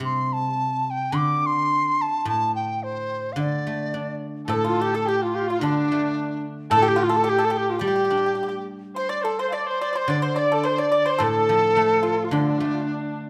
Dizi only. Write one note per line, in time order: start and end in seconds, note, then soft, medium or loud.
0.05 0.34 C6 medium
0.33 0.92 A5 medium
0.90 1.18 G5 medium
1.16 1.48 D6 medium
1.46 2.03 C6 loud
2.02 2.28 A5 medium
2.29 2.54 A5 medium
2.55 2.85 G5 medium
2.83 3.34 C5 medium
3.33 3.42 F5 soft
3.40 4.24 D5 medium
4.49 4.55 C5 medium
4.53 4.66 A4 medium
4.68 4.83 F4 medium
4.81 4.97 G4 medium
4.95 5.09 A4 medium
5.08 5.24 G4 medium
5.23 5.37 F4 medium
5.35 5.50 G4 medium
5.48 5.63 F4 medium
5.61 6.45 D4 medium
6.76 6.90 A4 loud
6.88 7.05 G4 medium
7.04 7.18 F4 medium
7.17 7.31 A4 loud
7.29 7.46 G4 loud
7.45 7.59 A4 medium
7.57 7.71 G4 medium
7.70 7.81 F4 medium
7.82 8.64 G4 medium
8.97 9.11 C5 medium
9.09 9.25 D5 medium
9.24 9.41 A4 medium
9.39 9.49 C5 medium
9.50 9.56 F5 medium
9.54 9.67 D5 medium
9.68 9.81 C5 medium
9.82 9.98 D5 medium
9.97 10.10 C5 medium
10.09 10.24 D5 medium
10.26 10.40 C5 medium
10.39 10.55 D5 medium
10.53 10.68 A4 medium
10.67 10.82 C5 medium
10.81 10.95 D5 medium
10.97 11.11 D5 medium
11.10 11.25 C5 medium
11.23 12.26 A4 loud
12.24 12.34 F4 medium
12.32 13.19 D4 medium